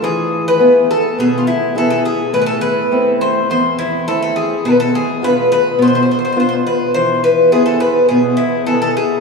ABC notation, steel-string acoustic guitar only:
X:1
M:4/4
L:1/8
Q:1/4=104
K:Ephr
V:1 name="Steel-string acoustic guitar"
E,2 [B,E^G]2 B,,2 [B,EG]2 | A,,2 [A,CE]2 E,,2 [A,CE]2 | B,,2 [B,DF]2 B,,2 [B,DF]2 | E,2 [B,E^G]2 B,,2 [B,EG]2 |]